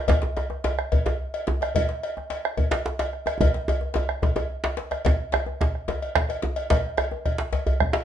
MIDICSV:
0, 0, Header, 1, 4, 480
1, 0, Start_track
1, 0, Tempo, 275103
1, 159, Time_signature, 12, 3, 24, 8
1, 14028, End_track
2, 0, Start_track
2, 0, Title_t, "Bombo"
2, 152, Note_on_c, 9, 43, 105
2, 327, Note_off_c, 9, 43, 0
2, 880, Note_on_c, 9, 37, 28
2, 1055, Note_off_c, 9, 37, 0
2, 1372, Note_on_c, 9, 37, 75
2, 1546, Note_off_c, 9, 37, 0
2, 1616, Note_on_c, 9, 43, 90
2, 1790, Note_off_c, 9, 43, 0
2, 2586, Note_on_c, 9, 37, 31
2, 2761, Note_off_c, 9, 37, 0
2, 2840, Note_on_c, 9, 37, 75
2, 3014, Note_off_c, 9, 37, 0
2, 3071, Note_on_c, 9, 43, 117
2, 3246, Note_off_c, 9, 43, 0
2, 3803, Note_on_c, 9, 37, 31
2, 3977, Note_off_c, 9, 37, 0
2, 4278, Note_on_c, 9, 37, 79
2, 4452, Note_off_c, 9, 37, 0
2, 4503, Note_on_c, 9, 43, 94
2, 4678, Note_off_c, 9, 43, 0
2, 5464, Note_on_c, 9, 37, 28
2, 5639, Note_off_c, 9, 37, 0
2, 5705, Note_on_c, 9, 37, 69
2, 5879, Note_off_c, 9, 37, 0
2, 5941, Note_on_c, 9, 37, 36
2, 5941, Note_on_c, 9, 43, 109
2, 6116, Note_off_c, 9, 37, 0
2, 6116, Note_off_c, 9, 43, 0
2, 6899, Note_on_c, 9, 37, 28
2, 7074, Note_off_c, 9, 37, 0
2, 7135, Note_on_c, 9, 37, 72
2, 7310, Note_off_c, 9, 37, 0
2, 7373, Note_on_c, 9, 43, 92
2, 7548, Note_off_c, 9, 43, 0
2, 8349, Note_on_c, 9, 37, 26
2, 8523, Note_off_c, 9, 37, 0
2, 8581, Note_on_c, 9, 37, 53
2, 8755, Note_off_c, 9, 37, 0
2, 8823, Note_on_c, 9, 43, 107
2, 8997, Note_off_c, 9, 43, 0
2, 9314, Note_on_c, 9, 37, 93
2, 9488, Note_off_c, 9, 37, 0
2, 9782, Note_on_c, 9, 37, 31
2, 9782, Note_on_c, 9, 43, 97
2, 9957, Note_off_c, 9, 37, 0
2, 9957, Note_off_c, 9, 43, 0
2, 10035, Note_on_c, 9, 37, 32
2, 10209, Note_off_c, 9, 37, 0
2, 10738, Note_on_c, 9, 37, 98
2, 10738, Note_on_c, 9, 43, 93
2, 10913, Note_off_c, 9, 37, 0
2, 10913, Note_off_c, 9, 43, 0
2, 11000, Note_on_c, 9, 37, 31
2, 11174, Note_off_c, 9, 37, 0
2, 11470, Note_on_c, 9, 37, 25
2, 11645, Note_off_c, 9, 37, 0
2, 11705, Note_on_c, 9, 43, 93
2, 11879, Note_off_c, 9, 43, 0
2, 12179, Note_on_c, 9, 37, 79
2, 12354, Note_off_c, 9, 37, 0
2, 12657, Note_on_c, 9, 37, 28
2, 12657, Note_on_c, 9, 43, 82
2, 12832, Note_off_c, 9, 37, 0
2, 12832, Note_off_c, 9, 43, 0
2, 12899, Note_on_c, 9, 37, 30
2, 13073, Note_off_c, 9, 37, 0
2, 13617, Note_on_c, 9, 37, 88
2, 13617, Note_on_c, 9, 43, 90
2, 13791, Note_off_c, 9, 37, 0
2, 13791, Note_off_c, 9, 43, 0
2, 14028, End_track
3, 0, Start_track
3, 0, Title_t, "Djembe"
3, 136, Note_on_c, 9, 64, 96
3, 164, Note_on_c, 9, 62, 96
3, 311, Note_off_c, 9, 64, 0
3, 338, Note_off_c, 9, 62, 0
3, 379, Note_on_c, 9, 62, 66
3, 398, Note_on_c, 9, 63, 76
3, 554, Note_off_c, 9, 62, 0
3, 573, Note_off_c, 9, 63, 0
3, 646, Note_on_c, 9, 63, 81
3, 821, Note_off_c, 9, 63, 0
3, 869, Note_on_c, 9, 63, 65
3, 1043, Note_off_c, 9, 63, 0
3, 1119, Note_on_c, 9, 62, 76
3, 1125, Note_on_c, 9, 63, 101
3, 1293, Note_off_c, 9, 62, 0
3, 1299, Note_off_c, 9, 63, 0
3, 1607, Note_on_c, 9, 64, 74
3, 1781, Note_off_c, 9, 64, 0
3, 1851, Note_on_c, 9, 62, 60
3, 1851, Note_on_c, 9, 63, 59
3, 1855, Note_off_c, 9, 63, 0
3, 1855, Note_on_c, 9, 63, 107
3, 2025, Note_off_c, 9, 62, 0
3, 2030, Note_off_c, 9, 63, 0
3, 2564, Note_on_c, 9, 62, 68
3, 2578, Note_on_c, 9, 63, 105
3, 2739, Note_off_c, 9, 62, 0
3, 2752, Note_off_c, 9, 63, 0
3, 2808, Note_on_c, 9, 63, 55
3, 2983, Note_off_c, 9, 63, 0
3, 3049, Note_on_c, 9, 64, 71
3, 3224, Note_off_c, 9, 64, 0
3, 3294, Note_on_c, 9, 62, 57
3, 3468, Note_off_c, 9, 62, 0
3, 3787, Note_on_c, 9, 63, 55
3, 3961, Note_off_c, 9, 63, 0
3, 4014, Note_on_c, 9, 62, 67
3, 4189, Note_off_c, 9, 62, 0
3, 4491, Note_on_c, 9, 64, 69
3, 4665, Note_off_c, 9, 64, 0
3, 4733, Note_on_c, 9, 62, 58
3, 4733, Note_on_c, 9, 63, 54
3, 4739, Note_off_c, 9, 62, 0
3, 4739, Note_on_c, 9, 62, 110
3, 4908, Note_off_c, 9, 63, 0
3, 4913, Note_off_c, 9, 62, 0
3, 4985, Note_on_c, 9, 62, 77
3, 5159, Note_off_c, 9, 62, 0
3, 5222, Note_on_c, 9, 62, 79
3, 5397, Note_off_c, 9, 62, 0
3, 5686, Note_on_c, 9, 63, 67
3, 5861, Note_off_c, 9, 63, 0
3, 5944, Note_on_c, 9, 63, 109
3, 5949, Note_on_c, 9, 64, 83
3, 6119, Note_off_c, 9, 63, 0
3, 6123, Note_off_c, 9, 64, 0
3, 6181, Note_on_c, 9, 62, 65
3, 6356, Note_off_c, 9, 62, 0
3, 6423, Note_on_c, 9, 63, 108
3, 6428, Note_on_c, 9, 62, 24
3, 6598, Note_off_c, 9, 63, 0
3, 6602, Note_off_c, 9, 62, 0
3, 6645, Note_on_c, 9, 63, 59
3, 6819, Note_off_c, 9, 63, 0
3, 6873, Note_on_c, 9, 62, 76
3, 6902, Note_on_c, 9, 63, 98
3, 7048, Note_off_c, 9, 62, 0
3, 7076, Note_off_c, 9, 63, 0
3, 7369, Note_on_c, 9, 62, 23
3, 7369, Note_on_c, 9, 64, 74
3, 7380, Note_on_c, 9, 63, 110
3, 7543, Note_off_c, 9, 62, 0
3, 7543, Note_off_c, 9, 64, 0
3, 7555, Note_off_c, 9, 63, 0
3, 7604, Note_on_c, 9, 62, 59
3, 7604, Note_on_c, 9, 63, 54
3, 7612, Note_off_c, 9, 63, 0
3, 7612, Note_on_c, 9, 63, 99
3, 7779, Note_off_c, 9, 62, 0
3, 7786, Note_off_c, 9, 63, 0
3, 8091, Note_on_c, 9, 62, 97
3, 8265, Note_off_c, 9, 62, 0
3, 8324, Note_on_c, 9, 62, 73
3, 8499, Note_off_c, 9, 62, 0
3, 8572, Note_on_c, 9, 62, 25
3, 8572, Note_on_c, 9, 63, 62
3, 8746, Note_off_c, 9, 62, 0
3, 8746, Note_off_c, 9, 63, 0
3, 8809, Note_on_c, 9, 64, 76
3, 8830, Note_on_c, 9, 62, 101
3, 8983, Note_off_c, 9, 64, 0
3, 9005, Note_off_c, 9, 62, 0
3, 9287, Note_on_c, 9, 62, 67
3, 9311, Note_on_c, 9, 63, 77
3, 9461, Note_off_c, 9, 62, 0
3, 9486, Note_off_c, 9, 63, 0
3, 9534, Note_on_c, 9, 63, 56
3, 9709, Note_off_c, 9, 63, 0
3, 9794, Note_on_c, 9, 62, 94
3, 9969, Note_off_c, 9, 62, 0
3, 10261, Note_on_c, 9, 62, 64
3, 10261, Note_on_c, 9, 64, 62
3, 10271, Note_on_c, 9, 63, 80
3, 10435, Note_off_c, 9, 62, 0
3, 10435, Note_off_c, 9, 64, 0
3, 10445, Note_off_c, 9, 63, 0
3, 10740, Note_on_c, 9, 62, 93
3, 10915, Note_off_c, 9, 62, 0
3, 10971, Note_on_c, 9, 62, 22
3, 10971, Note_on_c, 9, 63, 53
3, 11145, Note_off_c, 9, 62, 0
3, 11145, Note_off_c, 9, 63, 0
3, 11208, Note_on_c, 9, 62, 73
3, 11227, Note_on_c, 9, 63, 84
3, 11383, Note_off_c, 9, 62, 0
3, 11401, Note_off_c, 9, 63, 0
3, 11693, Note_on_c, 9, 62, 105
3, 11702, Note_on_c, 9, 64, 71
3, 11868, Note_off_c, 9, 62, 0
3, 11876, Note_off_c, 9, 64, 0
3, 12178, Note_on_c, 9, 63, 74
3, 12353, Note_off_c, 9, 63, 0
3, 12415, Note_on_c, 9, 63, 56
3, 12589, Note_off_c, 9, 63, 0
3, 12884, Note_on_c, 9, 62, 93
3, 13058, Note_off_c, 9, 62, 0
3, 13131, Note_on_c, 9, 62, 65
3, 13131, Note_on_c, 9, 64, 63
3, 13305, Note_off_c, 9, 62, 0
3, 13305, Note_off_c, 9, 64, 0
3, 13374, Note_on_c, 9, 64, 80
3, 13548, Note_off_c, 9, 64, 0
3, 13607, Note_on_c, 9, 62, 22
3, 13781, Note_off_c, 9, 62, 0
3, 13829, Note_on_c, 9, 62, 23
3, 13829, Note_on_c, 9, 63, 54
3, 13842, Note_off_c, 9, 62, 0
3, 13842, Note_on_c, 9, 62, 99
3, 14003, Note_off_c, 9, 63, 0
3, 14016, Note_off_c, 9, 62, 0
3, 14028, End_track
4, 0, Start_track
4, 0, Title_t, "Drums"
4, 142, Note_on_c, 9, 56, 74
4, 317, Note_off_c, 9, 56, 0
4, 639, Note_on_c, 9, 56, 51
4, 813, Note_off_c, 9, 56, 0
4, 1124, Note_on_c, 9, 56, 56
4, 1298, Note_off_c, 9, 56, 0
4, 1603, Note_on_c, 9, 56, 52
4, 1778, Note_off_c, 9, 56, 0
4, 1846, Note_on_c, 9, 56, 49
4, 2020, Note_off_c, 9, 56, 0
4, 2338, Note_on_c, 9, 56, 57
4, 2512, Note_off_c, 9, 56, 0
4, 2827, Note_on_c, 9, 56, 57
4, 3002, Note_off_c, 9, 56, 0
4, 3066, Note_on_c, 9, 56, 79
4, 3240, Note_off_c, 9, 56, 0
4, 3550, Note_on_c, 9, 56, 54
4, 3724, Note_off_c, 9, 56, 0
4, 4020, Note_on_c, 9, 56, 55
4, 4194, Note_off_c, 9, 56, 0
4, 4494, Note_on_c, 9, 56, 49
4, 4668, Note_off_c, 9, 56, 0
4, 4731, Note_on_c, 9, 56, 55
4, 4906, Note_off_c, 9, 56, 0
4, 5221, Note_on_c, 9, 56, 62
4, 5396, Note_off_c, 9, 56, 0
4, 5703, Note_on_c, 9, 56, 56
4, 5878, Note_off_c, 9, 56, 0
4, 5951, Note_on_c, 9, 56, 77
4, 6126, Note_off_c, 9, 56, 0
4, 6442, Note_on_c, 9, 56, 57
4, 6616, Note_off_c, 9, 56, 0
4, 6916, Note_on_c, 9, 56, 50
4, 7090, Note_off_c, 9, 56, 0
4, 7380, Note_on_c, 9, 56, 45
4, 7554, Note_off_c, 9, 56, 0
4, 7609, Note_on_c, 9, 56, 49
4, 7784, Note_off_c, 9, 56, 0
4, 8096, Note_on_c, 9, 56, 45
4, 8270, Note_off_c, 9, 56, 0
4, 8568, Note_on_c, 9, 56, 46
4, 8743, Note_off_c, 9, 56, 0
4, 8807, Note_on_c, 9, 56, 59
4, 8981, Note_off_c, 9, 56, 0
4, 9298, Note_on_c, 9, 56, 46
4, 9473, Note_off_c, 9, 56, 0
4, 9787, Note_on_c, 9, 56, 46
4, 9961, Note_off_c, 9, 56, 0
4, 10269, Note_on_c, 9, 56, 46
4, 10444, Note_off_c, 9, 56, 0
4, 10511, Note_on_c, 9, 56, 48
4, 10685, Note_off_c, 9, 56, 0
4, 10989, Note_on_c, 9, 56, 53
4, 11164, Note_off_c, 9, 56, 0
4, 11450, Note_on_c, 9, 56, 52
4, 11624, Note_off_c, 9, 56, 0
4, 11694, Note_on_c, 9, 56, 76
4, 11869, Note_off_c, 9, 56, 0
4, 12169, Note_on_c, 9, 56, 54
4, 12344, Note_off_c, 9, 56, 0
4, 12660, Note_on_c, 9, 56, 54
4, 12835, Note_off_c, 9, 56, 0
4, 13133, Note_on_c, 9, 56, 48
4, 13307, Note_off_c, 9, 56, 0
4, 13378, Note_on_c, 9, 56, 49
4, 13553, Note_off_c, 9, 56, 0
4, 13853, Note_on_c, 9, 56, 50
4, 14027, Note_off_c, 9, 56, 0
4, 14028, End_track
0, 0, End_of_file